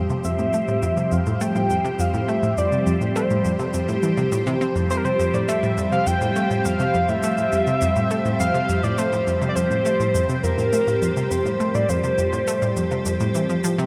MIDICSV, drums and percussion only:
0, 0, Header, 1, 2, 480
1, 0, Start_track
1, 0, Tempo, 582524
1, 200, Time_signature, 4, 2, 24, 8
1, 11422, End_track
2, 0, Start_track
2, 0, Title_t, "Drums"
2, 80, Note_on_c, 9, 77, 47
2, 80, Note_on_c, 9, 82, 39
2, 162, Note_off_c, 9, 77, 0
2, 162, Note_off_c, 9, 82, 0
2, 200, Note_on_c, 9, 82, 88
2, 282, Note_off_c, 9, 82, 0
2, 319, Note_on_c, 9, 82, 39
2, 402, Note_off_c, 9, 82, 0
2, 439, Note_on_c, 9, 77, 75
2, 439, Note_on_c, 9, 82, 66
2, 521, Note_off_c, 9, 77, 0
2, 521, Note_off_c, 9, 82, 0
2, 561, Note_on_c, 9, 82, 41
2, 643, Note_off_c, 9, 82, 0
2, 681, Note_on_c, 9, 82, 88
2, 763, Note_off_c, 9, 82, 0
2, 801, Note_on_c, 9, 82, 38
2, 883, Note_off_c, 9, 82, 0
2, 920, Note_on_c, 9, 77, 43
2, 920, Note_on_c, 9, 82, 67
2, 1002, Note_off_c, 9, 77, 0
2, 1002, Note_off_c, 9, 82, 0
2, 1041, Note_on_c, 9, 82, 39
2, 1123, Note_off_c, 9, 82, 0
2, 1160, Note_on_c, 9, 82, 93
2, 1243, Note_off_c, 9, 82, 0
2, 1282, Note_on_c, 9, 77, 77
2, 1282, Note_on_c, 9, 82, 42
2, 1365, Note_off_c, 9, 77, 0
2, 1365, Note_off_c, 9, 82, 0
2, 1402, Note_on_c, 9, 82, 70
2, 1484, Note_off_c, 9, 82, 0
2, 1524, Note_on_c, 9, 82, 42
2, 1606, Note_off_c, 9, 82, 0
2, 1643, Note_on_c, 9, 82, 95
2, 1725, Note_off_c, 9, 82, 0
2, 1763, Note_on_c, 9, 77, 43
2, 1763, Note_on_c, 9, 82, 39
2, 1845, Note_off_c, 9, 77, 0
2, 1845, Note_off_c, 9, 82, 0
2, 1884, Note_on_c, 9, 82, 42
2, 1966, Note_off_c, 9, 82, 0
2, 2004, Note_on_c, 9, 82, 39
2, 2086, Note_off_c, 9, 82, 0
2, 2124, Note_on_c, 9, 77, 71
2, 2124, Note_on_c, 9, 82, 84
2, 2206, Note_off_c, 9, 77, 0
2, 2206, Note_off_c, 9, 82, 0
2, 2244, Note_on_c, 9, 82, 40
2, 2326, Note_off_c, 9, 82, 0
2, 2363, Note_on_c, 9, 82, 64
2, 2445, Note_off_c, 9, 82, 0
2, 2484, Note_on_c, 9, 82, 41
2, 2566, Note_off_c, 9, 82, 0
2, 2604, Note_on_c, 9, 77, 39
2, 2604, Note_on_c, 9, 82, 89
2, 2687, Note_off_c, 9, 77, 0
2, 2687, Note_off_c, 9, 82, 0
2, 2723, Note_on_c, 9, 82, 41
2, 2805, Note_off_c, 9, 82, 0
2, 2841, Note_on_c, 9, 82, 66
2, 2923, Note_off_c, 9, 82, 0
2, 2961, Note_on_c, 9, 77, 73
2, 2961, Note_on_c, 9, 82, 38
2, 3043, Note_off_c, 9, 77, 0
2, 3043, Note_off_c, 9, 82, 0
2, 3080, Note_on_c, 9, 82, 93
2, 3162, Note_off_c, 9, 82, 0
2, 3201, Note_on_c, 9, 82, 40
2, 3284, Note_off_c, 9, 82, 0
2, 3320, Note_on_c, 9, 82, 70
2, 3402, Note_off_c, 9, 82, 0
2, 3440, Note_on_c, 9, 77, 43
2, 3440, Note_on_c, 9, 82, 39
2, 3522, Note_off_c, 9, 77, 0
2, 3522, Note_off_c, 9, 82, 0
2, 3560, Note_on_c, 9, 82, 96
2, 3642, Note_off_c, 9, 82, 0
2, 3680, Note_on_c, 9, 82, 37
2, 3763, Note_off_c, 9, 82, 0
2, 3801, Note_on_c, 9, 77, 76
2, 3801, Note_on_c, 9, 82, 40
2, 3884, Note_off_c, 9, 77, 0
2, 3884, Note_off_c, 9, 82, 0
2, 3922, Note_on_c, 9, 82, 38
2, 4004, Note_off_c, 9, 82, 0
2, 4041, Note_on_c, 9, 82, 84
2, 4123, Note_off_c, 9, 82, 0
2, 4162, Note_on_c, 9, 82, 38
2, 4245, Note_off_c, 9, 82, 0
2, 4282, Note_on_c, 9, 82, 63
2, 4365, Note_off_c, 9, 82, 0
2, 4401, Note_on_c, 9, 77, 38
2, 4401, Note_on_c, 9, 82, 38
2, 4483, Note_off_c, 9, 77, 0
2, 4483, Note_off_c, 9, 82, 0
2, 4521, Note_on_c, 9, 82, 85
2, 4604, Note_off_c, 9, 82, 0
2, 4642, Note_on_c, 9, 82, 38
2, 4724, Note_off_c, 9, 82, 0
2, 4760, Note_on_c, 9, 77, 72
2, 4760, Note_on_c, 9, 82, 65
2, 4843, Note_off_c, 9, 77, 0
2, 4843, Note_off_c, 9, 82, 0
2, 4881, Note_on_c, 9, 82, 37
2, 4964, Note_off_c, 9, 82, 0
2, 5000, Note_on_c, 9, 82, 89
2, 5082, Note_off_c, 9, 82, 0
2, 5120, Note_on_c, 9, 82, 40
2, 5203, Note_off_c, 9, 82, 0
2, 5240, Note_on_c, 9, 77, 42
2, 5240, Note_on_c, 9, 82, 62
2, 5323, Note_off_c, 9, 77, 0
2, 5323, Note_off_c, 9, 82, 0
2, 5361, Note_on_c, 9, 82, 37
2, 5443, Note_off_c, 9, 82, 0
2, 5481, Note_on_c, 9, 82, 90
2, 5564, Note_off_c, 9, 82, 0
2, 5599, Note_on_c, 9, 77, 70
2, 5599, Note_on_c, 9, 82, 35
2, 5682, Note_off_c, 9, 77, 0
2, 5682, Note_off_c, 9, 82, 0
2, 5720, Note_on_c, 9, 82, 37
2, 5802, Note_off_c, 9, 82, 0
2, 5839, Note_on_c, 9, 82, 39
2, 5921, Note_off_c, 9, 82, 0
2, 5958, Note_on_c, 9, 82, 84
2, 6040, Note_off_c, 9, 82, 0
2, 6079, Note_on_c, 9, 77, 41
2, 6079, Note_on_c, 9, 82, 39
2, 6161, Note_off_c, 9, 77, 0
2, 6161, Note_off_c, 9, 82, 0
2, 6200, Note_on_c, 9, 82, 62
2, 6282, Note_off_c, 9, 82, 0
2, 6319, Note_on_c, 9, 82, 36
2, 6401, Note_off_c, 9, 82, 0
2, 6439, Note_on_c, 9, 77, 69
2, 6439, Note_on_c, 9, 82, 85
2, 6521, Note_off_c, 9, 77, 0
2, 6521, Note_off_c, 9, 82, 0
2, 6560, Note_on_c, 9, 82, 38
2, 6642, Note_off_c, 9, 82, 0
2, 6681, Note_on_c, 9, 82, 61
2, 6763, Note_off_c, 9, 82, 0
2, 6802, Note_on_c, 9, 82, 36
2, 6884, Note_off_c, 9, 82, 0
2, 6923, Note_on_c, 9, 77, 44
2, 6923, Note_on_c, 9, 82, 89
2, 7005, Note_off_c, 9, 77, 0
2, 7005, Note_off_c, 9, 82, 0
2, 7042, Note_on_c, 9, 82, 37
2, 7124, Note_off_c, 9, 82, 0
2, 7162, Note_on_c, 9, 82, 65
2, 7244, Note_off_c, 9, 82, 0
2, 7282, Note_on_c, 9, 77, 73
2, 7282, Note_on_c, 9, 82, 37
2, 7364, Note_off_c, 9, 77, 0
2, 7364, Note_off_c, 9, 82, 0
2, 7401, Note_on_c, 9, 82, 89
2, 7483, Note_off_c, 9, 82, 0
2, 7522, Note_on_c, 9, 82, 35
2, 7604, Note_off_c, 9, 82, 0
2, 7642, Note_on_c, 9, 82, 38
2, 7724, Note_off_c, 9, 82, 0
2, 7761, Note_on_c, 9, 77, 41
2, 7761, Note_on_c, 9, 82, 36
2, 7843, Note_off_c, 9, 77, 0
2, 7843, Note_off_c, 9, 82, 0
2, 7881, Note_on_c, 9, 82, 78
2, 7963, Note_off_c, 9, 82, 0
2, 8002, Note_on_c, 9, 82, 35
2, 8084, Note_off_c, 9, 82, 0
2, 8122, Note_on_c, 9, 77, 71
2, 8122, Note_on_c, 9, 82, 58
2, 8204, Note_off_c, 9, 77, 0
2, 8204, Note_off_c, 9, 82, 0
2, 8243, Note_on_c, 9, 82, 36
2, 8325, Note_off_c, 9, 82, 0
2, 8363, Note_on_c, 9, 82, 81
2, 8445, Note_off_c, 9, 82, 0
2, 8481, Note_on_c, 9, 82, 35
2, 8564, Note_off_c, 9, 82, 0
2, 8603, Note_on_c, 9, 77, 43
2, 8603, Note_on_c, 9, 82, 60
2, 8685, Note_off_c, 9, 77, 0
2, 8685, Note_off_c, 9, 82, 0
2, 8723, Note_on_c, 9, 82, 36
2, 8805, Note_off_c, 9, 82, 0
2, 8841, Note_on_c, 9, 82, 83
2, 8924, Note_off_c, 9, 82, 0
2, 8962, Note_on_c, 9, 77, 76
2, 8962, Note_on_c, 9, 82, 37
2, 9045, Note_off_c, 9, 77, 0
2, 9045, Note_off_c, 9, 82, 0
2, 9084, Note_on_c, 9, 82, 61
2, 9166, Note_off_c, 9, 82, 0
2, 9202, Note_on_c, 9, 82, 36
2, 9285, Note_off_c, 9, 82, 0
2, 9321, Note_on_c, 9, 82, 87
2, 9404, Note_off_c, 9, 82, 0
2, 9443, Note_on_c, 9, 77, 44
2, 9443, Note_on_c, 9, 82, 34
2, 9525, Note_off_c, 9, 77, 0
2, 9525, Note_off_c, 9, 82, 0
2, 9561, Note_on_c, 9, 82, 38
2, 9643, Note_off_c, 9, 82, 0
2, 9680, Note_on_c, 9, 82, 38
2, 9763, Note_off_c, 9, 82, 0
2, 9800, Note_on_c, 9, 77, 74
2, 9800, Note_on_c, 9, 82, 82
2, 9883, Note_off_c, 9, 77, 0
2, 9883, Note_off_c, 9, 82, 0
2, 9920, Note_on_c, 9, 82, 37
2, 10002, Note_off_c, 9, 82, 0
2, 10039, Note_on_c, 9, 82, 59
2, 10121, Note_off_c, 9, 82, 0
2, 10161, Note_on_c, 9, 82, 35
2, 10243, Note_off_c, 9, 82, 0
2, 10280, Note_on_c, 9, 77, 44
2, 10280, Note_on_c, 9, 82, 86
2, 10363, Note_off_c, 9, 77, 0
2, 10363, Note_off_c, 9, 82, 0
2, 10400, Note_on_c, 9, 82, 37
2, 10483, Note_off_c, 9, 82, 0
2, 10520, Note_on_c, 9, 82, 64
2, 10603, Note_off_c, 9, 82, 0
2, 10640, Note_on_c, 9, 77, 75
2, 10640, Note_on_c, 9, 82, 39
2, 10722, Note_off_c, 9, 77, 0
2, 10722, Note_off_c, 9, 82, 0
2, 10759, Note_on_c, 9, 82, 87
2, 10841, Note_off_c, 9, 82, 0
2, 10879, Note_on_c, 9, 82, 38
2, 10961, Note_off_c, 9, 82, 0
2, 10999, Note_on_c, 9, 82, 67
2, 11082, Note_off_c, 9, 82, 0
2, 11121, Note_on_c, 9, 77, 46
2, 11121, Note_on_c, 9, 82, 38
2, 11203, Note_off_c, 9, 77, 0
2, 11203, Note_off_c, 9, 82, 0
2, 11240, Note_on_c, 9, 82, 91
2, 11323, Note_off_c, 9, 82, 0
2, 11362, Note_on_c, 9, 82, 35
2, 11422, Note_off_c, 9, 82, 0
2, 11422, End_track
0, 0, End_of_file